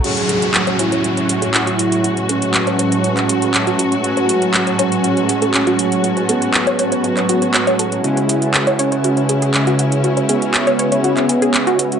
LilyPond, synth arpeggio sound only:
\new Staff \with { instrumentName = "Synth arpeggio sound" } { \time 4/4 \key fis \minor \tempo 4 = 120 fis'16 cis''16 a'16 r8 cis''16 cis''16 cis''16 fis'16 cis''16 gis'16 a'16 r16 fis'16 fis'16 r16 | fis'16 cis''16 a'16 r8 cis''16 cis''16 cis''16 fis'16 cis''16 gis'16 a'16 r16 fis'16 fis'16 r16 | fis'16 cis''16 a'16 r8 cis''16 cis''16 cis''16 fis'16 cis''16 gis'16 a'16 r16 fis'16 fis'16 r16 | fis'16 cis''16 a'16 r8 cis''16 cis''16 cis''16 fis'16 cis''16 fis'16 cis''16 cis''16 cis''16 a'16 r16 |
fis'16 cis''16 gis'16 r8 cis''16 cis''16 cis''16 fis'16 cis''16 gis'16 gis'16 r16 fis'16 fis'16 r16 | fis'16 cis''16 gis'16 r8 cis''16 cis''16 cis''16 fis'16 cis''16 gis'16 gis'16 r16 fis'16 fis'16 r16 | }